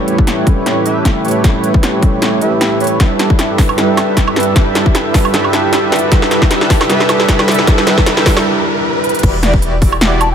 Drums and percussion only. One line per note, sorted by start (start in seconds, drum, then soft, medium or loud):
0.08 closed hi-hat medium
0.18 kick loud
0.27 snare medium
0.27 closed hi-hat medium
0.47 kick loud
0.47 closed hi-hat medium
0.66 snare medium
0.66 closed hi-hat medium
0.86 closed hi-hat medium
1.05 kick medium
1.05 snare medium
1.05 closed hi-hat medium
1.25 closed hi-hat soft
1.28 closed hi-hat medium
1.31 closed hi-hat medium
1.44 kick loud
1.44 snare medium
1.44 closed hi-hat medium
1.64 closed hi-hat medium
1.74 kick loud
1.83 snare medium
1.83 closed hi-hat medium
2.03 kick loud
2.03 closed hi-hat medium
2.22 snare medium
2.22 closed hi-hat medium
2.41 closed hi-hat medium
2.61 snare medium
2.61 closed hi-hat medium
2.80 closed hi-hat soft
2.84 closed hi-hat medium
2.87 closed hi-hat medium
3.00 kick loud
3.00 snare medium
3.00 closed hi-hat medium
3.19 snare medium
3.19 closed hi-hat medium
3.30 kick loud
3.39 snare medium
3.39 closed hi-hat medium
3.58 kick loud
3.58 snare medium
3.58 open hi-hat medium
3.69 high woodblock medium
3.78 snare medium
3.78 closed hi-hat medium
3.97 snare medium
3.97 closed hi-hat medium
3.97 high woodblock medium
4.17 kick medium
4.17 snare medium
4.17 closed hi-hat medium
4.28 high woodblock medium
4.36 snare medium
4.36 closed hi-hat soft
4.40 closed hi-hat medium
4.43 closed hi-hat medium
4.56 kick loud
4.56 snare medium
4.56 closed hi-hat medium
4.75 snare medium
4.75 closed hi-hat medium
4.86 kick medium
4.95 snare medium
4.95 closed hi-hat medium
5.14 kick medium
5.14 snare medium
5.14 open hi-hat loud
5.25 high woodblock medium
5.34 snare medium
5.34 closed hi-hat medium
5.44 high woodblock medium
5.53 snare medium
5.53 closed hi-hat medium
5.73 snare medium
5.73 closed hi-hat medium
5.92 snare medium
5.92 closed hi-hat soft
5.96 closed hi-hat medium
5.99 closed hi-hat medium
6.12 kick loud
6.12 snare loud
6.12 closed hi-hat medium
6.22 snare medium
6.31 snare loud
6.31 closed hi-hat medium
6.42 kick medium
6.42 snare medium
6.51 snare medium
6.51 closed hi-hat medium
6.61 snare medium
6.70 kick loud
6.70 snare loud
6.70 open hi-hat loud
6.81 snare medium
6.81 high woodblock medium
6.90 snare medium
6.90 closed hi-hat medium
7.00 snare medium
7.09 snare loud
7.09 closed hi-hat medium
7.09 high woodblock medium
7.20 snare medium
7.29 kick medium
7.29 snare loud
7.29 closed hi-hat medium
7.39 snare medium
7.39 high woodblock medium
7.48 snare loud
7.48 closed hi-hat medium
7.51 closed hi-hat medium
7.54 closed hi-hat medium
7.59 snare medium
7.67 kick loud
7.67 snare loud
7.67 closed hi-hat medium
7.78 snare medium
7.87 snare loud
7.87 closed hi-hat medium
7.98 kick medium
7.98 snare loud
8.06 snare loud
8.06 closed hi-hat medium
8.17 snare medium
8.26 kick loud
8.26 snare loud
8.26 open hi-hat loud
8.37 snare loud
8.37 high woodblock medium
9.04 closed hi-hat medium
9.09 closed hi-hat medium
9.15 closed hi-hat medium
9.19 closed hi-hat medium
9.23 kick loud
9.23 closed hi-hat medium
9.23 crash loud
9.43 snare medium
9.43 closed hi-hat medium
9.54 kick loud
9.62 closed hi-hat medium
9.82 kick loud
9.82 open hi-hat medium
9.92 high woodblock medium
10.01 snare loud
10.01 closed hi-hat medium
10.21 closed hi-hat medium
10.21 high woodblock medium